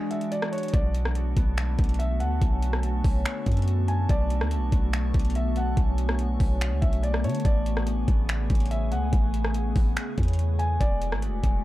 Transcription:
Already playing: ambient pad E3 G#3 D4 F#4, synth texture G#3 F#4 D5, harp G#3 D4 F#4 F#5
0.11 harp D4, felt piano E5, closed hi-hat
0.21 closed hi-hat
0.32 felt piano D5, closed hi-hat
0.42 cross-stick
0.52 felt piano C#5, harp F#5, closed hi-hat
0.58 closed hi-hat
0.63 closed hi-hat
0.68 closed hi-hat
0.73 808-style bass B1, ambient pad D3 A3 B3 F#4, synth texture A3 D4 C#6, harp D4, felt piano D5, kick, closed hi-hat
0.95 closed hi-hat
1.05 cross-stick
1.15 harp A4, closed hi-hat
1.37 808-style bass B1, harp B3, kick, closed hi-hat
1.57 harp A3, finger snap, closed hi-hat
1.79 808-style bass B1, harp D4, kick, closed hi-hat
1.84 closed hi-hat
1.89 closed hi-hat
1.94 closed hi-hat
1.99 felt piano E5, closed hi-hat
2.20 808-style bass D2, felt piano F#5, harp A5, closed hi-hat
2.41 808-style bass B1, harp C#4, kick, closed hi-hat
2.63 closed hi-hat
2.73 cross-stick
2.83 harp A4, closed hi-hat
3.04 808-style bass B1, harp C#4, kick, open hi-hat
3.25 harp B3, finger snap, closed hi-hat
3.46 808-style bass F#2, harp D4, kick, closed hi-hat
3.52 closed hi-hat
3.57 closed hi-hat
3.62 closed hi-hat
3.68 closed hi-hat
3.88 felt piano G#5, harp A5, closed hi-hat
4.09 808-style bass B1, harp A3, felt piano D5, kick, closed hi-hat
4.30 closed hi-hat
4.41 808-style bass D2, cross-stick
4.51 harp A4, closed hi-hat
4.57 808-style bass B1
4.72 808-style bass B1, harp B3, kick, closed hi-hat
4.93 finger snap, closed hi-hat
5.14 808-style bass B1, harp D4, kick, closed hi-hat
5.19 closed hi-hat
5.25 closed hi-hat
5.30 closed hi-hat
5.35 felt piano E5, closed hi-hat
5.56 felt piano F#5, harp A5, closed hi-hat
5.77 808-style bass B1, harp C#4, kick, closed hi-hat
5.98 closed hi-hat
6.09 cross-stick
6.19 harp A4, closed hi-hat
6.40 808-style bass B1, harp C#4, kick, open hi-hat
6.61 harp C#4, finger snap, closed hi-hat
6.71 808-style bass D2
6.82 808-style bass B1, harp D4, felt piano E5, kick, closed hi-hat
6.93 closed hi-hat
7.03 felt piano D5, closed hi-hat
7.14 cross-stick
7.24 808-style bass D3, felt piano C#5, harp A5, closed hi-hat
7.29 closed hi-hat
7.35 closed hi-hat
7.40 closed hi-hat
7.45 808-style bass A1, ambient pad C#3 G#4, synth texture B3 G#4, harp B3, felt piano D5, kick, closed hi-hat
7.66 closed hi-hat
7.77 cross-stick
7.87 harp G#4, closed hi-hat
8.08 808-style bass A1, harp B3, kick, closed hi-hat
8.29 harp B3, finger snap, closed hi-hat
8.50 808-style bass A1, harp C#4, kick, closed hi-hat
8.55 closed hi-hat
8.60 closed hi-hat
8.66 closed hi-hat
8.71 felt piano E5, closed hi-hat
8.92 808-style bass C#2, felt piano F#5, harp G#5, closed hi-hat
9.13 808-style bass A1, harp B3, kick, closed hi-hat
9.34 closed hi-hat
9.45 cross-stick
9.54 harp G#4, closed hi-hat
9.76 808-style bass A1, harp B3, kick, open hi-hat
9.96 harp B3, finger snap, closed hi-hat
10.18 808-style bass E2, harp C#4, kick, closed hi-hat
10.23 closed hi-hat
10.28 closed hi-hat
10.33 closed hi-hat
10.39 closed hi-hat
10.59 felt piano G#5, harp G#5, closed hi-hat
10.80 808-style bass E1, ambient pad D3 G#3 E4 F#4, harp G#3, synth texture G#3 F#4 D5, felt piano D5, kick, closed hi-hat
11.02 closed hi-hat
11.12 808-style bass G#1, cross-stick
11.22 harp F#4, closed hi-hat
11.28 808-style bass E1
11.43 808-style bass E1, harp G#3, kick, closed hi-hat

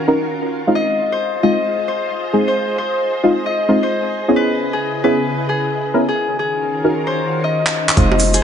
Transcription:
Already playing: string machine D#3 C#4 F4 F#4 A#4
0.08 synth stab C#4 D#4 F#4 A#4
0.67 synth stab G#3 C4 D#4 F4
0.75 string machine G#4 C5 D#5, harp D#5
1.12 harp C5
1.43 synth stab G#3 C4 D#4 F4, harp D#5
1.88 harp C5
2.33 synth stab G#3 C4 D#4 G#4
2.48 harp C5
2.78 harp C5
3.23 synth stab G#3 C4 D#4 F4
3.46 harp D#5
3.69 synth stab G#3 C4 D#4 F4
3.83 harp C5
4.28 synth stab B3 C#4 E4 G#4
4.36 string machine C#3 E4 B4, harp B4
4.73 harp G#4
5.04 synth stab B3 C#4 E4 G#4, harp B4
5.49 harp G#4
5.94 synth stab B3 C#4 E4 A#4
6.09 harp G#4
6.17 string machine D#3 C#4 F4 F#4 A#4
6.39 harp G#4
6.84 synth stab C#4 D#4 F#4 A#4
7.07 harp C5
7.44 harp D#5
7.66 clap
7.89 clap
7.97 808-style bass F1, synth stab G#3 C4 D#4 F4, string machine C4 F4 G#4, harp C5 D#5, kick, closed hi-hat, shaker
8.12 high bongo
8.19 open hi-hat, shaker
8.33 harp G#4 C5, closed hi-hat, shaker

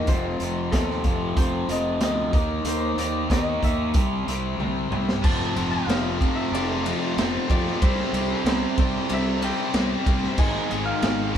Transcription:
Already playing: harp A#4 D#5 F5 G5
0.07 fingered electric bass F1, overdriven electric guitar F2 C3 F3, harp C5, kick, closed hi-hat
0.40 fingered electric bass F1, overdriven electric guitar F2 C3 F3, closed hi-hat
0.71 fingered electric bass D#2, overdriven electric guitar F2 C3 F3, harp A4, kick, snare, closed hi-hat
0.90 snare
1.04 fingered electric bass F1, overdriven electric guitar F2 C3 F3, kick, closed hi-hat
1.36 fingered electric bass F1, overdriven electric guitar F2 C3 F3, harp C5, kick, closed hi-hat
1.68 fingered electric bass F1, overdriven electric guitar F2 C3 F3, harp D#5, closed hi-hat
2.00 fingered electric bass D2, overdriven electric guitar F2 C3 F3, harp D#5, snare, closed hi-hat
2.33 fingered electric bass D#2, overdriven electric guitar D#3 A#3 D#4, kick, closed hi-hat
2.64 fingered electric bass D#2, overdriven electric guitar D#3 A#3 D#4, harp C5, closed hi-hat
2.97 fingered electric bass D#2, overdriven electric guitar D#3 A#3 D#4, harp D5, closed hi-hat
3.30 fingered electric bass D#2, overdriven electric guitar D#3 A#3 D#4, harp D#5, kick, snare, closed hi-hat
3.62 fingered electric bass D#2, overdriven electric guitar D#3 A#3 D#4, harp E5, kick, closed hi-hat
3.94 fingered electric bass C2, overdriven electric guitar C3 G3 C4, kick, closed hi-hat
4.27 fingered electric bass C2, overdriven electric guitar C3 G3 C4, closed hi-hat
4.58 fingered electric bass C2, overdriven electric guitar C3 G3 C4, high tom
4.91 fingered electric bass C2, overdriven electric guitar C3 G3 C4, mid tom
5.09 snare
5.23 fingered electric bass F1, overdriven electric guitar F2 C3 F3, distorted electric guitar A3 C4 F4, string machine G4 A4 F5, harp A5, kick, crash
5.41 snare
5.56 fingered electric bass F1, overdriven electric guitar F2 C3 F3, ride
5.71 harp F5
5.86 fingered electric bass F1, overdriven electric guitar F2 C3 F3, snare, ride
6.21 overdriven electric guitar F2 C3 F3, kick, ride
6.35 harp E5
6.52 fingered electric bass F1, overdriven electric guitar F2 C3 F3, harp D5, ride
6.84 overdriven electric guitar F2 C3 F3, distorted electric guitar A3 C4 F4, ride
7.17 fingered electric bass F1, overdriven electric guitar F2 C3 F3, distorted electric guitar A3 C4 F4, harp C5, snare, ride
7.49 overdriven electric guitar F2 C3 F3, fingered electric bass F2, harp D5, kick, ride
7.66 snare
7.81 fingered electric bass C2, overdriven electric guitar C3 G3 C4, string machine C4 E5, distorted electric guitar E4, harp C5, kick, ride
7.99 snare
8.13 fingered electric bass C2, overdriven electric guitar C3 G3 C4, ride
8.44 fingered electric bass C2, overdriven electric guitar C3 G3 C4, harp C5, snare, ride
8.78 fingered electric bass C2, overdriven electric guitar C3 G3 C4, harp D5, kick, ride
9.09 fingered electric bass C2, overdriven electric guitar C3 G3 C4, harp E5, ride
9.41 overdriven electric guitar C3 G3 C4, distorted electric guitar E4, harp G5, ride
9.74 fingered electric bass C2, overdriven electric guitar C3 G3 C4, distorted electric guitar E4, snare, ride
10.06 fingered electric bass C2, overdriven electric guitar C3 G3 C4, kick, ride
10.23 snare
10.36 fingered electric bass G#1, overdriven electric guitar G#2 D#3 G#3, string machine G#3 D#4 C5, distorted electric guitar C4, harp G#5, kick, crash
10.40 distorted electric guitar D#4
10.55 snare
10.70 fingered electric bass G#1, overdriven electric guitar G#2 D#3 G#3, ride
10.85 harp F5
11.02 fingered electric bass G#1, overdriven electric guitar G#2 D#3 G#3, snare, ride
11.34 overdriven electric guitar G#2 D#3 G#3

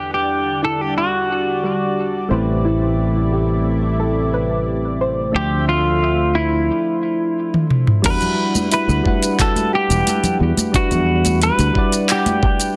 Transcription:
Already playing: fretless electric bass E2, analog synth pad D3 G3 D4 D5 F#5, synth keys G3 D4 E4 B4 F#5, synth pluck D4, clean electric guitar G4
0.14 clean electric guitar G4
0.62 synth pluck E4, clean electric guitar A4
0.81 clean electric guitar G4
0.98 clean electric guitar F#4
1.30 synth pluck F#4
1.63 synth pluck G3
2.28 fretless electric bass A1, analog synth pad C3 A3 E4, synth keys A3 C4 E4 G4, synth pluck C5
2.34 synth keys B4
2.65 synth pluck E4
3.32 synth pluck G4
4.00 synth pluck A4
4.34 synth pluck B4
5.01 synth pluck C5
5.32 fretless electric bass D2, analog synth pad D3 F3 A3 C4 E5, synth keys F3 A3 D4 E5, synth pluck D4
5.36 clean electric guitar G4, synth keys C5
5.69 clean electric guitar F4
6.02 synth pluck E5
6.35 clean electric guitar E4
7.54 high tom
7.70 mid tom
7.87 mid tom
8.02 fretless electric bass E2, synth keys G3 D4 E4 F#4, synth pluck D4, clean electric guitar B4, kick, closed hi-hat, crash, shaker
8.07 synth keys B4
8.21 closed hi-hat, low conga, shaker
8.55 high conga, shaker
8.72 synth pluck E4, clean electric guitar B4, closed hi-hat, shaker
8.89 fretless electric bass D2, shaker
9.03 synth keys G3 D4 E4 F#5, kick, high conga
9.08 synth keys B4
9.23 closed hi-hat, shaker
9.39 synth pluck F#4, clean electric guitar A4, kick, clap, closed hi-hat, shaker
9.56 closed hi-hat, high conga, shaker
9.73 synth pluck G4, clean electric guitar G4
9.90 fretless electric bass E1, closed hi-hat, shaker
10.07 closed hi-hat, high conga, shaker
10.23 closed hi-hat, low conga, shaker
10.40 fretless electric bass E2, synth pluck F#4
10.57 closed hi-hat, high conga, shaker
10.72 synth keys G3 D4 E4 F#4, synth pluck D4, clean electric guitar F#4, kick, closed hi-hat, shaker
10.77 synth keys B4
10.91 fretless electric bass E2, closed hi-hat, low conga, shaker
11.25 closed hi-hat, high conga, shaker
11.41 synth pluck E4, clean electric guitar B4, closed hi-hat, shaker
11.59 fretless electric bass D2, closed hi-hat, shaker
11.74 synth keys G3 D4 E4 F#5, kick
11.78 synth keys D5
11.92 closed hi-hat, shaker
12.09 clean electric guitar G4, synth pluck F#5, clap, closed hi-hat, shaker
12.26 closed hi-hat, high conga, shaker
12.43 synth pluck G4, kick
12.60 closed hi-hat, shaker

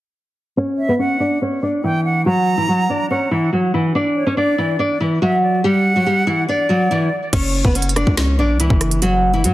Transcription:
0.57 nylon-string guitar C#4 C#5
0.78 flute E5
0.89 nylon-string guitar B3 B4
0.99 nylon-string guitar C#4 C#5, flute F#5
1.20 nylon-string guitar D4 D5
1.42 nylon-string guitar C#4 C#5
1.63 nylon-string guitar D4 D5
1.83 nylon-string guitar E3 E4, flute G5
2.05 flute F#5
2.26 nylon-string guitar F#3 F#4, flute A#5
2.57 nylon-string guitar E3 E4
2.68 nylon-string guitar F#3 F#4
2.90 nylon-string guitar D4 D5
3.10 nylon-string guitar C#4 C#5, flute F#5
3.31 nylon-string guitar E3 E4
3.53 nylon-string guitar F#3 F#4
3.74 nylon-string guitar E3 E4
3.95 nylon-string guitar D4 D5
4.16 flute C#5
4.27 nylon-string guitar C#4 C#5
4.37 nylon-string guitar D4 D5, flute D5
4.58 nylon-string guitar E3 E4
4.79 nylon-string guitar D4 D5
5.00 nylon-string guitar E3 E4
5.22 nylon-string guitar F#3 F#4, flute E5
5.43 flute D5
5.64 nylon-string guitar G3 G4, flute F#5
5.96 nylon-string guitar F#3 F#4
6.06 nylon-string guitar G3 G4
6.27 nylon-string guitar E3 E4
6.48 nylon-string guitar D4 D5, flute D5
6.69 nylon-string guitar F#3 F#4
6.91 nylon-string guitar E3 E4
7.33 808-style bass F#1, nylon-string guitar C#4 C#5, kick, closed hi-hat, crash
7.65 808-style bass F#1, nylon-string guitar B3 B4, kick
7.75 nylon-string guitar C#4 C#5, closed hi-hat
7.82 closed hi-hat
7.89 closed hi-hat
7.96 nylon-string guitar D4 D5, cross-stick, closed hi-hat
8.07 808-style bass C#2, kick
8.17 nylon-string guitar C#4 C#5, snare, closed hi-hat
8.39 808-style bass A#1, nylon-string guitar D4 D5
8.54 808-style bass C#2
8.60 nylon-string guitar E3 E4, closed hi-hat
8.70 808-style bass F#1, kick
8.81 cross-stick, closed hi-hat
8.91 closed hi-hat
9.02 nylon-string guitar F#3 F#4, closed hi-hat
9.33 nylon-string guitar E3 E4
9.44 808-style bass A#2, nylon-string guitar F#3 F#4, closed hi-hat

